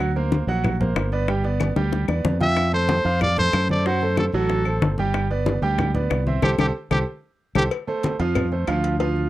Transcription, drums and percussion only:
0.00 high bongo medium
0.00 high conga soft
0.00 claves medium
0.16 high conga soft
0.32 high bongo medium
0.32 high conga medium
0.48 high bongo soft
0.48 high conga soft
0.64 high bongo medium
0.64 high conga soft
0.64 low conga medium
0.64 claves medium
0.81 high bongo soft
0.81 high conga soft
0.81 low conga medium
0.96 high bongo medium
0.96 low bongo medium
0.96 high conga soft
0.96 claves medium
1.12 high bongo soft
1.28 high bongo medium
1.28 high conga soft
1.44 high bongo soft
1.44 high conga soft
1.60 high bongo medium
1.60 high conga loud
1.60 claves medium
1.76 high bongo medium
1.76 high conga soft
1.93 high bongo medium
1.93 high conga soft
2.08 high bongo medium
2.08 high conga soft
2.08 claves medium
2.25 low bongo loud
2.25 high conga medium
2.40 low bongo medium
2.40 high conga medium
2.56 high bongo medium
2.56 high conga soft
2.56 claves medium
2.73 high conga soft
2.89 high bongo medium
2.89 high conga loud
3.05 high bongo soft
3.05 high conga soft
3.21 high bongo medium
3.21 high conga soft
3.21 low conga medium
3.21 claves medium
3.37 high bongo soft
3.37 high conga soft
3.37 low conga medium
3.53 high bongo medium
3.53 low bongo medium
3.53 high conga soft
3.53 claves medium
3.69 high bongo soft
3.69 high conga medium
3.86 high bongo medium
3.86 high conga soft
4.01 high bongo soft
4.01 high conga soft
4.17 high bongo medium
4.17 high conga loud
4.17 claves medium
4.33 high bongo soft
4.33 high conga soft
4.50 high bongo medium
4.50 high conga soft
4.65 high bongo soft
4.65 high conga soft
4.65 claves medium
4.82 high bongo medium
4.82 low bongo medium
4.82 high conga medium
4.98 high conga medium
5.14 high bongo medium
5.14 high conga soft
5.14 claves medium
5.31 high conga soft
5.46 high bongo medium
5.46 high conga loud
5.62 high bongo soft
5.62 high conga soft
5.78 high bongo medium
5.78 high conga soft
5.78 low conga medium
5.78 claves medium
5.95 high bongo soft
5.95 high conga soft
5.95 low conga medium
6.10 high bongo medium
6.10 low bongo medium
6.10 high conga soft
6.10 claves medium
6.27 high bongo soft
6.27 high conga medium
6.42 high bongo loud
6.42 high conga loud
6.42 claves medium
6.59 high bongo loud
6.59 high conga medium
6.59 claves loud
6.91 high bongo medium
6.91 high conga medium
6.91 claves medium
7.55 high bongo medium
7.55 high conga medium
7.55 claves loud
7.71 cowbell medium
7.71 high conga soft
7.71 claves medium
7.88 high conga soft
8.03 cowbell medium
8.03 high conga medium
8.20 cowbell medium
8.20 high conga soft
8.35 cowbell medium
8.35 high conga soft
8.35 low conga medium
8.35 claves medium
8.52 high conga soft
8.67 cowbell medium
8.67 high conga soft
8.67 claves medium
8.84 cowbell medium
9.00 cowbell loud
9.00 high conga soft
9.16 high conga soft

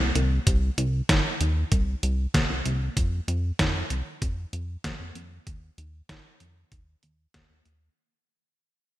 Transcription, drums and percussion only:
0.15 closed hi-hat medium
0.47 kick loud
0.47 closed hi-hat medium
0.78 closed hi-hat medium
1.09 kick loud
1.09 snare loud
1.09 closed hi-hat medium
1.41 closed hi-hat medium
1.72 kick loud
1.72 closed hi-hat medium
2.03 closed hi-hat medium
2.34 kick loud
2.34 snare loud
2.34 closed hi-hat medium
2.65 closed hi-hat medium
2.97 kick loud
2.97 closed hi-hat medium
3.28 closed hi-hat medium
3.59 kick loud
3.59 snare loud
3.59 closed hi-hat medium
3.90 closed hi-hat medium
4.22 kick loud
4.22 closed hi-hat medium
4.53 closed hi-hat medium
4.84 kick loud
4.84 snare loud
4.84 closed hi-hat loud
5.15 closed hi-hat medium
5.47 kick loud
5.47 closed hi-hat medium
5.78 closed hi-hat medium
6.09 kick loud
6.09 snare loud
6.09 closed hi-hat medium
6.40 closed hi-hat medium
6.72 kick loud
6.72 closed hi-hat medium
7.03 closed hi-hat medium
7.34 kick loud
7.34 snare loud
7.34 closed hi-hat medium
7.65 closed hi-hat medium

